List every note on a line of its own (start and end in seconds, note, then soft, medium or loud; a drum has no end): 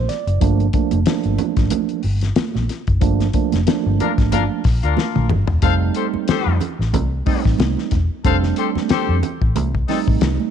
0.09 0.39 D5 medium
0.09 snare soft
0.09 closed hi-hat medium
0.27 0.39 F#1 loud
0.27 closed hi-hat soft
0.41 0.68 G1 loud
0.41 0.66 F3 loud
0.41 0.66 A3 medium
0.41 0.66 A#3 medium
0.41 0.66 D4 loud
0.41 kick loud
0.41 closed hi-hat loud
0.41 muted conga soft
0.59 closed hi-hat soft
0.59 high conga medium
0.73 0.98 F3 medium
0.73 0.98 A3 medium
0.73 0.98 A#3 medium
0.73 0.99 D4 loud
0.73 kick loud
0.73 closed hi-hat medium
0.91 1.04 F1 medium
0.91 closed hi-hat medium
0.91 high conga medium
1.06 2.00 F3 medium
1.06 2.00 A3 medium
1.06 2.00 A#3 medium
1.06 2.01 D4 medium
1.06 snare loud
1.06 closed hi-hat medium
1.06 muted conga soft
1.24 1.37 G1 loud
1.24 closed hi-hat soft
1.38 closed hi-hat medium
1.38 muted conga soft
1.38 low conga medium
1.57 1.69 G#1 medium
1.57 kick loud
1.57 snare soft
1.57 closed hi-hat medium
1.70 closed hi-hat loud
1.70 muted conga soft
1.70 high conga medium
1.70 low conga medium
1.89 closed hi-hat soft
2.03 2.30 G1 medium
2.03 open hi-hat medium
2.03 muted conga soft
2.21 snare soft
2.21 closed hi-hat soft
2.36 muted fingered electric bass stroke soft
2.36 snare loud
2.36 closed hi-hat loud
2.36 muted conga soft
2.36 high conga medium
2.55 2.67 A#1 medium
2.55 snare soft
2.55 high conga medium
2.69 snare soft
2.69 closed hi-hat medium
2.69 muted conga soft
2.87 2.99 F#1 medium
2.87 kick medium
2.87 closed hi-hat soft
3.01 3.28 G1 medium
3.01 3.26 F3 loud
3.01 3.26 A3 medium
3.01 3.26 A#3 medium
3.01 3.26 D4 loud
3.01 kick loud
3.01 closed hi-hat loud
3.20 snare soft
3.20 closed hi-hat soft
3.20 high conga medium
3.33 3.59 F3 medium
3.33 3.59 A3 medium
3.33 3.59 A#3 medium
3.33 3.59 D4 medium
3.33 kick medium
3.33 closed hi-hat medium
3.52 3.65 F1 medium
3.52 snare soft
3.52 closed hi-hat soft
3.52 high conga medium
3.66 4.61 F3 medium
3.66 4.61 A3 medium
3.66 4.61 A#3 medium
3.66 4.61 D4 medium
3.66 snare loud
3.66 closed hi-hat medium
3.86 3.98 G1 loud
4.00 4.12 D4 medium
4.00 4.12 F4 medium
4.00 4.12 A#4 medium
4.00 closed hi-hat medium
4.00 muted conga soft
4.00 low conga medium
4.18 4.33 G#1 medium
4.18 kick loud
4.18 snare soft
4.18 closed hi-hat medium
4.32 4.48 G1 loud
4.32 4.44 D4 medium
4.32 4.44 F4 medium
4.32 4.44 A#4 loud
4.32 closed hi-hat loud
4.32 muted conga soft
4.32 high conga medium
4.32 low conga medium
4.64 4.80 A#1 medium
4.64 kick loud
4.64 snare soft
4.64 open hi-hat medium
4.83 4.95 D2 medium
4.83 5.28 D4 medium
4.83 5.28 F4 medium
4.83 5.28 A#4 medium
4.83 closed hi-hat soft
4.97 snare medium
4.97 muted conga soft
4.97 high conga medium
5.15 5.28 A#1 medium
5.15 high tom medium
5.15 high conga medium
5.29 5.46 G1 loud
5.29 mid tom medium
5.29 muted conga soft
5.29 low conga medium
5.47 5.60 E1 medium
5.47 floor tom loud
5.62 5.89 F1 loud
5.62 6.57 G3 medium
5.62 6.57 A3 medium
5.62 6.57 C4 medium
5.62 6.58 D#4 medium
5.62 5.74 A4 loud
5.62 5.74 C5 medium
5.62 5.74 F5 loud
5.62 kick loud
5.62 closed hi-hat loud
5.62 muted conga soft
5.94 6.07 G4 medium
5.94 6.07 A4 medium
5.94 6.07 C5 medium
5.94 closed hi-hat medium
6.14 muted fingered electric bass stroke soft
6.14 high conga medium
6.28 6.55 G4 loud
6.28 6.55 A4 medium
6.28 6.55 C5 loud
6.28 muted fingered electric bass stroke soft
6.28 snare loud
6.28 closed hi-hat medium
6.28 muted conga soft
6.46 6.58 F2 loud
6.61 closed hi-hat medium
6.61 muted conga soft
6.61 low conga medium
6.79 6.94 A1 medium
6.79 snare soft
6.94 7.20 C2 medium
6.94 kick medium
6.94 closed hi-hat loud
6.94 muted conga soft
6.94 high conga medium
6.94 low conga medium
7.26 7.97 G3 medium
7.26 7.97 A3 medium
7.26 7.41 C4 medium
7.26 7.98 C4 medium
7.26 7.41 D#4 medium
7.26 7.98 D#4 medium
7.26 7.41 A4 medium
7.26 kick loud
7.26 open hi-hat medium
7.26 muted conga soft
7.45 7.57 A1 medium
7.45 kick loud
7.45 snare soft
7.59 7.74 C2 loud
7.59 snare loud
7.59 closed hi-hat loud
7.59 muted conga soft
7.59 high conga medium
7.77 snare soft
7.77 high conga medium
7.91 8.07 E1 loud
7.91 kick medium
7.91 snare soft
7.91 closed hi-hat medium
7.91 muted conga soft
8.24 8.51 F1 medium
8.24 9.19 G3 medium
8.24 9.19 A3 medium
8.24 9.19 C4 medium
8.24 9.20 D4 medium
8.24 8.36 A4 loud
8.24 8.37 C5 loud
8.24 8.37 F5 loud
8.24 kick loud
8.24 closed hi-hat loud
8.24 muted conga soft
8.43 snare soft
8.56 8.69 G4 medium
8.56 8.69 A4 medium
8.56 8.68 C5 medium
8.56 closed hi-hat medium
8.76 muted fingered electric bass stroke soft
8.76 snare soft
8.76 high conga medium
8.89 9.17 G4 loud
8.89 9.17 A4 loud
8.89 9.17 C5 loud
8.89 muted fingered electric bass stroke soft
8.89 snare loud
8.89 closed hi-hat medium
8.89 muted conga soft
9.09 9.20 F2 loud
9.23 closed hi-hat medium
9.23 low conga medium
9.41 9.56 A1 medium
9.41 kick loud
9.56 9.83 C2 medium
9.56 closed hi-hat loud
9.56 muted conga soft
9.56 high conga medium
9.56 low conga medium
9.75 kick medium
9.88 10.51 G3 medium
9.88 10.51 A3 medium
9.88 9.99 C4 medium
9.88 10.51 C4 medium
9.88 9.99 D#4 medium
9.88 10.51 D#4 loud
9.88 10.00 A4 medium
9.88 snare soft
9.88 open hi-hat medium
9.88 muted conga soft
10.08 10.19 A1 medium
10.08 kick medium
10.21 10.36 C2 loud
10.21 snare loud
10.21 closed hi-hat loud
10.21 muted conga soft
10.21 high conga medium
10.40 high conga medium